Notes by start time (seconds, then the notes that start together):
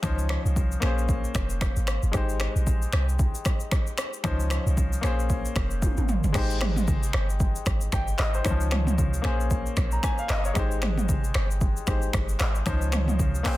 0.02 C#2 F3 C#4 D#4 C5, finger snap, kick, cross-stick, shaker
0.19 shaker
0.29 finger snap, cross-stick
0.45 C2, shaker
0.56 kick, shaker
0.72 shaker
0.80 A#1 A#3 C#4 G#4, finger snap, cross-stick
0.85 C5
0.98 shaker
1.09 kick, shaker
1.24 shaker
1.35 F1, finger snap, kick, cross-stick, shaker
1.50 shaker
1.61 finger snap, kick, cross-stick, shaker
1.76 G#1, shaker
1.87 finger snap, cross-stick, shaker
2.03 G1, shaker
2.12 G#1 G#3 D#4 G4, finger snap, kick, cross-stick, shaker
2.17 C5
2.29 shaker
2.40 finger snap, cross-stick
2.56 A#1, shaker
2.67 kick, shaker
2.82 shaker
2.93 C2, finger snap, cross-stick
3.09 shaker
3.19 kick, shaker
3.35 shaker
3.45 finger snap, kick, cross-stick, shaker
3.60 shaker
3.71 finger snap, kick, cross-stick, shaker
3.87 shaker
3.98 finger snap, cross-stick, shaker
4.13 shaker
4.24 C#2 F3 C#4 D#4 C5, finger snap, kick, cross-stick, shaker
4.40 shaker
4.50 finger snap, cross-stick, shaker
4.66 C2, shaker
4.77 kick, shaker
4.93 shaker
5.01 A#1 A#3 C#4 G#4, finger snap, cross-stick, shaker
5.06 C5
5.19 shaker
5.30 kick, shaker
5.45 shaker
5.56 F1, finger snap, kick, cross-stick, shaker
5.71 shaker
5.82 kick, high tom, shaker
5.97 G#1, mid tom, shaker
6.08 mid tom, shaker
6.24 G1, floor tom, shaker
6.32 G#1 G#3 D#4 G4, finger snap, kick, cross-stick, crash, shaker
6.37 C5
6.50 shaker
6.61 finger snap, cross-stick, mid tom
6.76 mid tom, shaker
6.88 kick, shaker
7.03 shaker
7.13 G1, finger snap, cross-stick
7.30 shaker
7.40 kick, shaker
7.56 shaker
7.66 G#1, finger snap, kick, cross-stick, shaker
7.81 shaker
7.92 G1 G5, finger snap, kick, cross-stick, shaker
8.08 shaker
8.18 G#1 D#5, finger snap, cross-stick, clap, shaker
8.34 C5, shaker
8.44 C#2 D#3 C#4 D#4 C5, finger snap, kick, cross-stick, shaker
8.50 F3
8.61 shaker
8.71 finger snap, cross-stick, mid tom
8.87 mid tom, shaker
8.98 kick, shaker
9.14 shaker
9.22 A#1 A#3 C#4 G#4, finger snap, cross-stick
9.27 C5
9.40 shaker
9.51 kick, shaker
9.66 shaker
9.77 A#1, finger snap, kick, cross-stick, shaker
9.91 A#5, shaker
10.03 G#5, finger snap, kick, cross-stick, shaker
10.18 F5, shaker
10.29 G1 D#5, finger snap, cross-stick, clap, shaker
10.45 C#5, shaker
10.54 G#1 G#3 D#4 G4, finger snap, kick, cross-stick, shaker
10.59 C5
10.71 shaker
10.82 finger snap, cross-stick, mid tom
10.98 mid tom, shaker
11.09 kick, shaker
11.24 shaker
11.34 G1, finger snap, cross-stick
11.51 shaker
11.61 kick, shaker
11.77 shaker
11.87 G#1 G#3 D#4 G4 C5, finger snap, kick, cross-stick, shaker
12.02 shaker
12.13 G1, finger snap, kick, cross-stick, shaker
12.29 shaker
12.39 G#1, finger snap, cross-stick, clap, shaker
12.55 shaker
12.66 C#2 F3 C#4 D#4 C5, finger snap, kick, cross-stick, shaker
12.82 shaker
12.92 finger snap, cross-stick, mid tom, shaker
13.08 mid tom, shaker
13.19 kick, shaker
13.35 shaker
13.43 A#1 A#3 C#4 G#4 G5, finger snap, cross-stick, clap, open hi-hat, shaker
13.48 C5